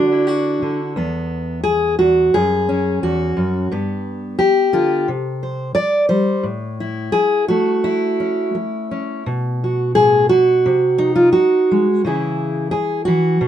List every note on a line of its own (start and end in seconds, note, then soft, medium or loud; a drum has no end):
0.00 0.61 D3 medium
0.00 0.80 D4 medium
0.00 0.26 F#4 loud
0.12 0.97 E4 medium
0.27 0.96 F#4 medium
0.62 0.97 D3 medium
0.96 1.98 E2 medium
0.96 1.63 B3 soft
1.64 1.98 G#4 loud
1.99 2.34 E2 medium
1.99 2.34 F#4 medium
2.34 3.02 F#2 medium
2.34 3.03 G#4 loud
2.69 3.68 C#4 soft
3.03 3.36 E2 medium
3.03 3.72 F#4 medium
3.37 3.71 F#2 medium
3.71 4.39 G2 medium
3.71 5.04 B3 medium
4.39 5.07 G4 loud
4.39 muted steel-string acoustic guitar stroke medium
4.73 5.07 D3 medium
4.73 5.07 F4 medium
5.08 5.75 C3 medium
5.43 5.74 C5 soft
5.75 6.08 D5 loud
5.75 muted steel-string acoustic guitar stroke medium
6.09 6.45 G3 medium
6.09 6.45 C5 medium
6.43 7.13 A2 medium
6.80 7.83 E4 medium
7.12 7.48 G#4 loud
7.12 muted steel-string acoustic guitar stroke medium
7.48 9.23 A3 medium
7.48 8.55 F#4 medium
7.84 9.27 E4 medium
8.20 8.90 C#4 soft
8.55 muted steel-string acoustic guitar stroke medium
8.91 9.23 C#4 soft
9.26 10.30 B2 medium
9.64 9.95 F#4 medium
9.95 10.31 A2 medium
9.95 10.29 G#4 loud
10.29 10.67 B2 medium
10.29 11.15 F#4 medium
10.66 11.35 C3 medium
10.98 11.86 D#4 medium
11.16 11.32 F4 medium
11.32 12.03 F#4 medium
11.32 muted steel-string acoustic guitar stroke medium
11.71 12.01 G#3 medium
12.04 12.72 C#3 medium
12.04 13.06 E3 soft
12.04 13.37 E4 medium
12.04 12.70 G#4 medium
12.71 13.05 G#4 medium
12.71 muted steel-string acoustic guitar stroke medium
13.05 13.37 E3 medium
13.05 13.48 F#4 medium
13.41 13.48 B2 medium